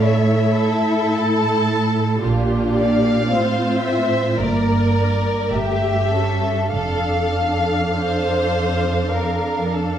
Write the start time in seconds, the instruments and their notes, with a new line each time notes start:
Already playing: cello section A2, viola section A4
0.02 viola section E4, violin section C#5 E5
0.58 violin section A4
1.16 viola section A4, violin section A5
2.23 double bass section A#1, cello section A#2, viola section D4 G4, violin section F4
2.77 violin section D5 F5
3.32 cello section A2, viola section C4 F4, violin section C5
3.85 violin section E5
4.39 double bass section G1, cello section G2, viola section A#3 A#4, violin section A#4 D5
5.53 double bass section G1, cello section G2, viola section A3 G4, violin section G4 E5
6.11 viola section C#4, violin section A4
6.72 double bass section F1, cello section F2, viola section D4 A4, violin section A4 F5
7.93 violin section C5
9.12 violin section A#4
9.72 violin section A4